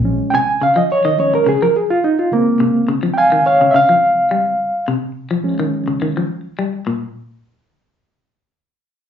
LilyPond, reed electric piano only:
<<
  \new Staff \with { instrumentName = "Reed electric piano" } { \time 4/4 \key bes \dorian \tempo 4 = 106 r8 <g'' aes''>8 f''16 ees''16 des''16 ees''16 des''16 bes'16 aes'16 bes'16 aes'16 f'16 ees'16 f'16 | bes4 r8 <f'' g'' aes''>8 <des'' f''>8 <e'' f''>4.~ | <e'' f''>8 r2. r8 | r1 | }
  \new Staff \with { instrumentName = "Reed electric piano" } { \clef bass \time 4/4 \key bes \dorian <f aes des'>8 r4. <f aes des'>8 r4. | <des aes c'>1 | r4. <f aes des'>4. r4 | r1 | }
>>